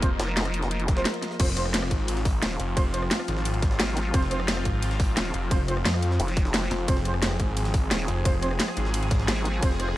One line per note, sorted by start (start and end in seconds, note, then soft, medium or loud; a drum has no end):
0.00 0.18 F1 loud
0.00 1.36 F3 medium
0.00 1.36 A#3 medium
0.00 0.09 C4 medium
0.00 1.40 F4 medium
0.00 0.09 F4 medium
0.00 1.37 A#4 medium
0.00 1.40 C5 medium
0.00 0.09 C5 loud
0.00 1.40 D#5 medium
0.00 kick loud
0.00 closed hi-hat medium
0.00 closed hi-hat loud
0.20 1.05 F1 medium
0.20 cross-stick soft
0.20 snare loud
0.20 closed hi-hat medium
0.28 cross-stick soft
0.37 snare loud
0.37 closed hi-hat medium
0.45 cross-stick medium
0.45 closed hi-hat soft
0.54 closed hi-hat medium
0.63 snare soft
0.63 closed hi-hat soft
0.71 closed hi-hat medium
0.80 closed hi-hat soft
0.88 kick loud
0.88 snare medium
0.88 closed hi-hat medium
0.97 1.04 C4 loud
0.97 1.04 F4 medium
0.97 1.04 C5 loud
0.97 snare medium
1.05 snare loud
1.05 closed hi-hat loud
1.05 closed hi-hat medium
1.14 closed hi-hat soft
1.22 snare soft
1.22 closed hi-hat medium
1.31 snare soft
1.40 1.90 F1 loud
1.40 9.97 F3 medium
1.40 1.46 C4 medium
1.40 9.97 C4 medium
1.40 6.86 F4 medium
1.40 1.46 F4 medium
1.40 1.46 C5 loud
1.40 kick loud
1.40 closed hi-hat loud
1.40 closed hi-hat medium
1.40 crash loud
1.40 ride medium
1.48 snare soft
1.57 1.64 C4 medium
1.57 1.64 F4 medium
1.57 1.64 C5 loud
1.57 cross-stick soft
1.57 closed hi-hat medium
1.65 cross-stick medium
1.74 snare loud
1.74 closed hi-hat medium
1.74 ride medium
1.83 cross-stick medium
1.91 2.41 G#1 loud
1.91 kick medium
1.91 closed hi-hat medium
2.08 closed hi-hat medium
2.08 ride medium
2.17 snare soft
2.17 closed hi-hat soft
2.25 kick loud
2.25 closed hi-hat medium
2.25 open hi-hat medium
2.42 2.58 D#1 loud
2.42 snare loud
2.42 closed hi-hat medium
2.42 closed hi-hat loud
2.42 ride medium
2.51 snare medium
2.60 3.10 F1 loud
2.60 closed hi-hat medium
2.77 2.84 C4 medium
2.77 2.84 F4 medium
2.77 2.84 C5 loud
2.77 kick loud
2.77 closed hi-hat medium
2.77 closed hi-hat loud
2.77 ride medium
2.94 3.01 C4 medium
2.94 3.01 F4 medium
2.94 3.01 C5 loud
2.94 cross-stick soft
2.94 closed hi-hat medium
3.02 cross-stick medium
3.11 snare loud
3.11 closed hi-hat medium
3.11 ride medium
3.20 cross-stick medium
3.28 3.78 G#1 loud
3.28 closed hi-hat medium
3.37 snare soft
3.45 closed hi-hat medium
3.45 ride medium
3.54 closed hi-hat soft
3.62 kick loud
3.62 snare medium
3.62 closed hi-hat medium
3.71 snare medium
3.80 4.13 G#1 loud
3.80 snare loud
3.80 closed hi-hat medium
3.80 closed hi-hat loud
3.80 ride medium
3.88 snare soft
3.97 snare soft
3.97 closed hi-hat medium
4.14 4.64 F1 loud
4.14 4.21 C4 loud
4.14 4.21 F4 medium
4.14 4.21 C5 loud
4.14 kick loud
4.14 closed hi-hat medium
4.14 ride medium
4.22 snare soft
4.31 4.38 C4 medium
4.31 4.38 F4 medium
4.31 4.38 C5 loud
4.31 cross-stick soft
4.31 closed hi-hat medium
4.40 cross-stick medium
4.48 snare loud
4.48 closed hi-hat medium
4.48 ride medium
4.57 cross-stick medium
4.65 5.15 G#1 loud
4.65 kick medium
4.65 closed hi-hat medium
4.82 closed hi-hat medium
4.82 ride medium
4.91 snare soft
4.91 closed hi-hat soft
5.00 kick loud
5.00 closed hi-hat medium
5.00 open hi-hat medium
5.17 5.33 D#1 loud
5.17 snare loud
5.17 closed hi-hat medium
5.17 ride medium
5.25 snare medium
5.34 5.84 F1 loud
5.34 closed hi-hat medium
5.51 5.58 C4 loud
5.51 5.58 F4 medium
5.51 5.58 C5 loud
5.51 kick loud
5.51 closed hi-hat medium
5.51 ride medium
5.68 5.75 C4 medium
5.68 5.75 F4 medium
5.68 5.75 C5 loud
5.68 cross-stick soft
5.68 closed hi-hat medium
5.77 cross-stick soft
5.85 6.18 F2 loud
5.85 snare loud
5.85 closed hi-hat medium
5.85 ride medium
5.94 cross-stick medium
6.03 closed hi-hat medium
6.11 snare soft
6.20 6.70 F1 loud
6.20 closed hi-hat medium
6.20 ride medium
6.28 snare soft
6.28 closed hi-hat soft
6.37 kick loud
6.37 snare medium
6.37 closed hi-hat medium
6.45 snare medium
6.54 snare loud
6.54 closed hi-hat medium
6.54 ride medium
6.63 snare soft
6.71 6.87 F1 loud
6.71 snare soft
6.71 closed hi-hat medium
6.88 7.38 F1 medium
6.88 6.95 C4 medium
6.88 6.95 F4 medium
6.88 9.97 G#4 medium
6.88 6.95 C5 loud
6.88 kick loud
6.88 closed hi-hat medium
6.88 ride medium
6.97 snare soft
7.05 7.12 C4 medium
7.05 7.12 F4 medium
7.05 7.12 C5 loud
7.05 cross-stick soft
7.05 closed hi-hat medium
7.14 cross-stick soft
7.22 snare loud
7.22 closed hi-hat medium
7.22 ride medium
7.31 cross-stick medium
7.40 7.90 G#1 loud
7.40 kick medium
7.40 closed hi-hat medium
7.57 closed hi-hat medium
7.57 ride medium
7.65 snare soft
7.65 closed hi-hat soft
7.74 kick loud
7.74 closed hi-hat medium
7.74 open hi-hat medium
7.91 8.07 D#1 loud
7.91 snare loud
7.91 closed hi-hat medium
7.91 ride medium
8.00 snare medium
8.08 8.58 F1 loud
8.08 closed hi-hat medium
8.25 8.32 C4 loud
8.25 8.32 F4 medium
8.25 8.32 C5 loud
8.25 kick loud
8.25 closed hi-hat medium
8.25 closed hi-hat loud
8.25 ride medium
8.42 8.49 C4 medium
8.42 8.49 F4 medium
8.42 8.49 C5 loud
8.42 cross-stick soft
8.42 closed hi-hat medium
8.51 cross-stick soft
8.60 snare loud
8.60 closed hi-hat medium
8.60 ride medium
8.68 cross-stick medium
8.77 9.27 G#1 medium
8.77 closed hi-hat medium
8.85 snare soft
8.94 closed hi-hat medium
8.94 ride medium
9.03 closed hi-hat soft
9.11 kick loud
9.11 snare medium
9.11 closed hi-hat medium
9.20 snare medium
9.28 9.61 G#1 loud
9.28 snare loud
9.28 closed hi-hat medium
9.28 ride medium
9.37 snare soft
9.45 snare soft
9.45 closed hi-hat medium
9.63 9.97 F1 loud
9.63 9.69 C4 loud
9.63 9.69 F4 medium
9.63 9.69 C5 loud
9.63 kick loud
9.63 closed hi-hat medium
9.63 closed hi-hat loud
9.63 ride medium
9.71 snare soft
9.80 9.87 C4 loud
9.80 9.87 F4 medium
9.80 9.87 C5 loud
9.80 cross-stick soft
9.80 closed hi-hat medium
9.88 cross-stick soft